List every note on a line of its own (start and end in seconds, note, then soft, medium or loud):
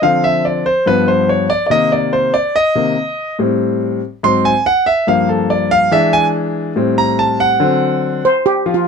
0.02 0.62 D3 medium
0.02 0.62 F3 medium
0.02 0.63 C4 medium
0.02 0.23 F5 medium
0.24 0.44 E5 medium
0.45 0.65 D5 medium
0.66 0.86 C5 medium
0.86 1.46 G2 medium
0.86 1.47 F3 medium
0.86 1.47 B3 medium
0.86 1.08 B4 medium
1.08 1.28 C5 medium
1.29 1.50 C#5 medium
1.50 1.65 D5 loud
1.67 2.30 C3 medium
1.67 1.69 D5 medium
1.71 2.31 D#3 soft
1.71 2.31 A#3 medium
1.71 1.91 D#5 loud
1.92 2.12 D5 medium
2.13 2.33 C5 medium
2.34 2.54 D5 medium
2.56 3.36 D#5 loud
2.75 2.95 C3 soft
2.75 2.95 D#3 soft
2.75 2.95 A#3 medium
3.39 3.99 A2 medium
3.39 3.99 G3 medium
3.39 4.00 C4 medium
4.23 4.51 G#2 medium
4.23 4.52 F#3 medium
4.23 4.52 C4 medium
4.23 4.44 C6 loud
4.45 4.65 G#5 loud
4.66 4.86 F#5 loud
4.86 5.07 E5 medium
5.07 5.88 G2 medium
5.07 5.88 F3 medium
5.07 5.88 A#3 medium
5.07 5.28 F5 medium
5.29 5.49 A4 medium
5.50 5.71 D5 medium
5.71 5.92 F5 loud
5.91 6.72 E3 medium
5.91 6.72 G#3 medium
5.91 6.73 D4 medium
5.91 6.13 E5 loud
6.13 6.26 G#5 loud
6.76 7.56 A2 medium
6.76 7.57 G3 medium
6.76 7.57 C4 medium
6.98 7.18 A#5 medium
7.19 7.39 A5 medium
7.40 8.31 F#5 loud
7.60 8.20 D3 medium
7.60 8.21 F#3 medium
7.60 8.21 C4 medium
8.25 8.46 C5 medium
8.46 8.74 G4 loud
8.66 8.83 F3 medium
8.66 8.83 F4 medium
8.74 8.88 F4 medium